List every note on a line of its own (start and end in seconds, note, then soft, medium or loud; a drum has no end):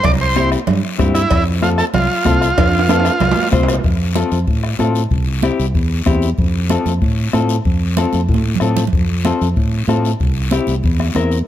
0.04 0.55 C2 loud
0.04 0.12 D5 loud
0.04 bombo low medium
0.04 bombo rim medium
0.04 cowbell loud
0.04 low conga medium
0.04 long guiro medium
0.21 0.50 C5 medium
0.36 0.58 C4 medium
0.36 0.58 E4 medium
0.36 0.58 G4 medium
0.36 bombo rim medium
0.36 high conga medium
0.36 short guiro medium
0.52 bombo rim medium
0.52 short guiro medium
0.67 0.81 G2 loud
0.67 bombo rim medium
0.67 cowbell medium
0.67 low conga loud
0.67 long guiro medium
0.98 1.24 G2 loud
0.98 1.21 C4 medium
0.98 1.21 E4 medium
0.98 1.21 G4 medium
0.98 bombo low medium
0.98 bombo rim medium
0.98 high conga medium
0.98 low timbale medium
0.98 short guiro medium
1.15 1.44 E4 loud
1.15 bombo rim medium
1.15 short guiro medium
1.31 1.81 F2 loud
1.31 bombo low medium
1.31 bombo rim medium
1.31 cowbell loud
1.31 long guiro medium
1.62 1.84 C4 medium
1.62 1.70 F4 medium
1.62 1.85 F4 medium
1.62 1.85 A4 medium
1.62 bombo rim medium
1.62 high conga medium
1.62 short guiro medium
1.78 1.85 A4 loud
1.78 bombo rim medium
1.78 short guiro medium
1.94 2.07 C2 loud
1.94 3.48 F4 medium
1.94 bombo rim medium
1.94 cowbell medium
1.94 low conga medium
1.94 long guiro medium
2.25 2.51 C2 medium
2.25 2.48 C4 medium
2.25 2.48 F4 medium
2.25 2.48 A4 medium
2.25 bombo low medium
2.25 bombo rim medium
2.25 high conga medium
2.25 short guiro medium
2.41 bombo rim medium
2.41 short guiro medium
2.58 3.08 F2 loud
2.58 bombo low medium
2.58 bombo rim medium
2.58 cowbell loud
2.58 high timbale loud
2.58 long guiro medium
2.79 high timbale loud
2.89 3.11 C4 medium
2.89 3.11 F4 medium
2.89 3.12 A4 medium
2.89 bombo rim medium
2.89 high conga medium
2.89 high timbale loud
2.89 short guiro medium
3.00 high timbale medium
3.05 bombo rim medium
3.05 short guiro medium
3.20 3.34 C2 loud
3.20 bombo rim medium
3.20 cowbell medium
3.20 low conga medium
3.20 low timbale medium
3.20 long guiro medium
3.32 low timbale medium
3.36 high conga medium
3.42 low timbale medium
3.52 3.78 C2 loud
3.52 3.74 C4 medium
3.52 3.75 F4 medium
3.52 3.75 C5 loud
3.52 bombo low medium
3.52 bombo rim medium
3.52 high conga medium
3.52 short guiro medium
3.63 low timbale medium
3.68 bombo rim medium
3.68 short guiro medium
3.73 low timbale medium
3.84 4.22 F2 medium
3.84 bombo low medium
3.84 high conga soft
3.84 long guiro medium
4.15 4.38 C4 medium
4.15 4.38 F4 medium
4.15 4.38 A4 medium
4.15 bombo rim medium
4.15 high conga medium
4.15 short guiro medium
4.32 4.44 F2 medium
4.32 short guiro medium
4.47 4.73 A2 medium
4.47 bombo low medium
4.47 high conga soft
4.47 long guiro medium
4.64 bombo rim medium
4.79 5.05 A2 medium
4.79 5.01 C4 medium
4.79 5.02 F4 medium
4.79 5.02 A4 medium
4.79 bombo rim medium
4.79 high conga medium
4.79 short guiro medium
4.95 short guiro medium
5.11 5.49 C2 medium
5.11 bombo low medium
5.11 high conga soft
5.11 long guiro medium
5.42 5.65 C4 medium
5.42 5.65 E4 medium
5.42 5.65 G4 medium
5.42 bombo rim medium
5.42 high conga medium
5.42 short guiro medium
5.59 5.72 C2 medium
5.59 short guiro medium
5.74 6.00 E2 medium
5.74 bombo low medium
5.74 high conga soft
5.74 long guiro medium
6.06 6.32 E2 medium
6.06 6.29 C4 medium
6.06 6.29 E4 medium
6.06 6.29 G4 medium
6.06 bombo low medium
6.06 bombo rim medium
6.06 high conga medium
6.06 short guiro medium
6.22 short guiro medium
6.38 6.76 F2 medium
6.38 bombo low medium
6.38 high conga soft
6.38 long guiro medium
6.69 6.92 C4 medium
6.69 6.92 F4 medium
6.69 6.93 A4 medium
6.69 bombo rim medium
6.69 high conga medium
6.69 short guiro medium
6.86 6.98 F2 medium
6.86 high conga medium
6.86 short guiro medium
7.02 7.27 A2 medium
7.02 bombo low medium
7.02 high conga soft
7.02 long guiro medium
7.33 7.59 A2 medium
7.33 7.56 C4 medium
7.33 7.56 F4 medium
7.33 7.56 A4 medium
7.33 bombo rim medium
7.33 high conga medium
7.33 short guiro medium
7.49 short guiro medium
7.65 8.04 F2 medium
7.65 bombo low medium
7.65 high conga soft
7.65 long guiro medium
7.97 8.20 C4 medium
7.97 8.20 F4 medium
7.97 8.20 A4 medium
7.97 bombo rim medium
7.97 high conga medium
7.97 short guiro medium
8.13 8.26 F2 medium
8.13 high conga medium
8.13 short guiro medium
8.29 8.54 A2 medium
8.29 bombo low medium
8.29 long guiro medium
8.34 high conga medium
8.55 low conga medium
8.60 8.86 A2 medium
8.60 8.83 C4 medium
8.60 8.83 F4 medium
8.60 8.84 A4 medium
8.60 bombo rim medium
8.60 short guiro medium
8.77 low conga medium
8.77 short guiro medium
8.87 low conga medium
8.93 9.31 F2 medium
8.93 bombo low medium
8.93 high conga soft
8.93 long guiro medium
9.25 9.47 C4 medium
9.25 9.47 F4 medium
9.25 9.47 A4 medium
9.25 bombo rim medium
9.25 high conga medium
9.25 short guiro medium
9.41 9.54 F2 medium
9.41 short guiro medium
9.56 9.82 A2 medium
9.56 bombo low medium
9.56 high conga soft
9.56 long guiro medium
9.88 10.13 A2 medium
9.88 10.11 C4 medium
9.88 10.11 F4 medium
9.88 10.11 A4 medium
9.88 bombo rim medium
9.88 high conga medium
9.88 short guiro medium
10.05 short guiro medium
10.20 10.58 C2 medium
10.20 bombo low medium
10.20 high conga soft
10.20 long guiro medium
10.51 10.74 C4 medium
10.51 10.74 E4 medium
10.51 10.74 G4 medium
10.51 bombo rim medium
10.51 high conga medium
10.51 short guiro medium
10.67 10.80 C2 medium
10.67 high conga medium
10.67 short guiro medium
10.83 11.09 E2 medium
10.83 bombo low medium
10.83 high conga soft
10.83 long guiro medium
10.99 bombo rim medium
10.99 high conga medium
11.15 11.41 E2 medium
11.15 11.37 C4 medium
11.15 11.37 E4 medium
11.15 11.38 A#4 medium
11.15 bombo rim medium
11.15 high conga medium
11.15 short guiro medium
11.31 short guiro medium